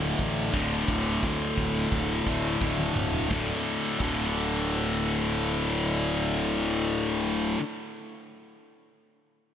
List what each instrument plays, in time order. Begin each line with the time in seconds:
Already playing: fingered electric bass D1, distorted electric guitar D2 A2 D3
0.19 fingered electric bass A1, kick
0.53 fingered electric bass D1, distorted electric guitar D2 A2 D3, kick, open hi-hat
0.88 fingered electric bass D1, kick
1.23 fingered electric bass D2, kick, snare, open hi-hat
1.57 fingered electric bass D1, kick
1.92 fingered electric bass D1, kick, open hi-hat
2.26 fingered electric bass D1, distorted electric guitar D2 A2 D3, kick
2.61 fingered electric bass D1, distorted electric guitar D2 A2 D3, kick, snare
2.79 high tom
2.95 fingered electric bass D1, mid tom
3.13 floor tom
3.29 fingered electric bass D1, distorted electric guitar D2 A2, kick, snare
3.33 distorted electric guitar D3
3.99 fingered electric bass D1, distorted electric guitar D2 A2 D3, kick, crash